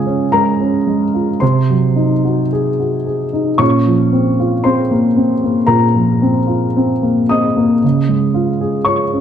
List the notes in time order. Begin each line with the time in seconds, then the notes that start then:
Already playing: C#3 G#3 F4 G#4 G#5
0.06 C#4
0.32 G#3 A#4 A#5
0.61 C#4
0.87 G#3
1.14 F4
1.40 C3 C5 C6
1.70 F#3
1.96 D#4
2.25 F#4
2.53 G#4
2.80 F#4
3.07 G#4
3.33 D#4
3.58 A#2 C#4 C#6
3.86 F3
4.13 C4
4.40 F4
4.64 C4 C5 C6
4.91 A#3
5.17 C4
5.44 A#3
5.67 A#2 A#4 A#5
5.95 F3
6.22 C4
6.47 F4
6.77 C4
7.03 A#3
7.29 C4 D#5 D#6
7.57 A#3
7.84 C#3
8.09 G#3
8.34 F4
8.61 G#4
8.85 F4 C#5 C#6
9.13 C#4